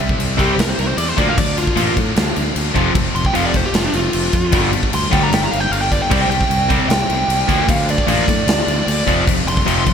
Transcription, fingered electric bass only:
0.00 C2
0.19 C2
0.58 C2
0.78 C2
0.97 E2
1.18 D2
1.38 D2
1.76 A1
1.97 A2
2.16 D2
2.37 D2
2.56 D2
2.75 F1
2.95 F1
3.15 F1
3.34 F1
3.73 F1
3.93 F1
4.14 F1
4.33 F2
4.53 G1
4.93 D2
5.13 D2
5.32 G1
5.53 G1
5.71 G1
6.12 C2
6.29 C2
6.49 C2
6.89 C2
7.08 C2
7.28 C2
7.49 D2
7.69 D2
8.06 A1
8.28 A2
8.46 D2
8.67 D2
8.87 D2
9.07 F1
9.27 F1
9.46 F1
9.67 F1

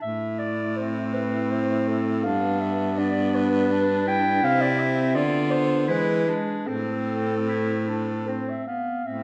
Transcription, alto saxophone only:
0.04 E4
2.22 B3
2.98 D4
4.43 C4
5.16 B3
5.88 G#3
6.27 G#3
6.67 C4
9.05 C4

